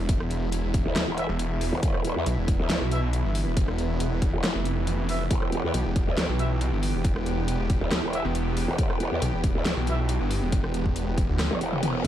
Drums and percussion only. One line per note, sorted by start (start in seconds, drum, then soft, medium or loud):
0.09 kick loud
0.09 closed hi-hat medium
0.20 cross-stick medium
0.31 closed hi-hat medium
0.52 closed hi-hat medium
0.74 kick loud
0.74 closed hi-hat medium
0.96 cross-stick medium
0.96 snare loud
0.96 closed hi-hat medium
1.18 closed hi-hat medium
1.39 closed hi-hat medium
1.61 open hi-hat medium
1.83 kick loud
1.83 closed hi-hat medium
1.94 cross-stick medium
2.05 closed hi-hat medium
2.26 closed hi-hat medium
2.48 kick loud
2.48 closed hi-hat medium
2.70 snare loud
2.70 closed hi-hat medium
2.92 closed hi-hat medium
3.13 closed hi-hat medium
3.35 open hi-hat medium
3.57 kick loud
3.57 closed hi-hat medium
3.68 cross-stick medium
3.78 closed hi-hat medium
4.00 closed hi-hat medium
4.22 kick loud
4.22 closed hi-hat medium
4.44 cross-stick medium
4.44 snare loud
4.44 closed hi-hat medium
4.65 closed hi-hat medium
4.87 closed hi-hat medium
5.09 open hi-hat medium
5.31 kick loud
5.31 closed hi-hat medium
5.42 cross-stick medium
5.52 closed hi-hat soft
5.74 closed hi-hat medium
5.96 kick loud
5.96 closed hi-hat medium
6.18 snare loud
6.18 closed hi-hat medium
6.39 closed hi-hat soft
6.61 closed hi-hat medium
6.83 open hi-hat medium
7.05 kick loud
7.05 closed hi-hat medium
7.16 cross-stick medium
7.26 closed hi-hat medium
7.48 closed hi-hat medium
7.70 kick loud
7.70 closed hi-hat medium
7.91 cross-stick medium
7.91 snare loud
7.91 closed hi-hat medium
8.13 closed hi-hat medium
8.35 closed hi-hat medium
8.57 open hi-hat medium
8.78 kick loud
8.78 closed hi-hat medium
8.90 cross-stick medium
9.00 closed hi-hat medium
9.22 closed hi-hat medium
9.44 kick loud
9.44 closed hi-hat medium
9.65 snare loud
9.65 closed hi-hat medium
9.87 closed hi-hat medium
10.09 closed hi-hat medium
10.31 open hi-hat loud
10.52 kick loud
10.52 closed hi-hat medium
10.64 cross-stick medium
10.74 closed hi-hat medium
10.86 kick medium
10.96 closed hi-hat medium
11.18 kick loud
11.18 closed hi-hat medium
11.39 cross-stick medium
11.39 snare loud
11.39 closed hi-hat medium
11.39 high tom medium
11.51 high tom medium
11.61 closed hi-hat medium
11.73 mid tom medium
11.83 closed hi-hat medium
11.83 mid tom medium